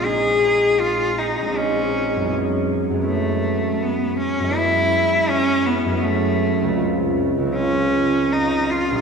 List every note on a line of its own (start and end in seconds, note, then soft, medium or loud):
0.00 1.38 A#1 soft
0.00 1.41 G#3 soft
0.00 1.45 A#3 soft
0.00 1.48 C4 soft
0.00 1.52 D#4 soft
0.05 0.81 G#4 medium
0.80 1.20 F4 medium
1.19 1.59 D#4 medium
1.39 2.26 A#1 soft
1.39 2.18 G#3 soft
1.46 2.30 A#3 soft
1.46 2.31 C4 soft
1.53 2.33 D#4 soft
1.57 2.33 C#4 medium
2.16 2.89 F#2 soft
2.16 2.92 G#3 soft
2.22 2.96 B3 soft
2.26 3.00 C#4 soft
2.26 3.03 E4 soft
2.90 4.39 F#2 soft
2.90 4.42 G#3 soft
2.97 4.46 B3 soft
2.97 4.56 C#4 soft
3.04 3.84 A3 medium
3.04 4.49 E4 soft
3.83 4.19 B3 medium
4.20 4.58 C#4 medium
4.40 5.84 F#2 soft
4.40 5.88 G#3 soft
4.47 5.91 B3 soft
4.47 5.98 E4 soft
4.56 5.31 E4 medium
5.29 5.68 C#4 medium
5.66 6.06 B3 medium
5.85 6.74 F#2 soft
5.85 6.65 G#3 soft
5.92 6.77 B3 soft
5.92 6.71 C#4 soft
5.99 6.80 E4 soft
6.04 6.80 A3 medium
6.62 7.37 C#2 medium
6.66 7.41 G#3 soft
6.66 7.44 C4 soft
6.72 7.48 C#4 soft
6.72 7.51 F4 soft
7.39 9.01 C#2 medium
7.39 9.01 G#3 soft
7.46 8.96 C4 soft
7.46 9.01 C#4 soft
7.52 8.34 C#4 medium
7.52 9.01 F4 soft
8.32 8.72 D#4 medium
8.70 9.01 F4 medium
8.91 9.01 A#1 soft
8.91 9.01 G3 soft
8.98 9.01 C4 soft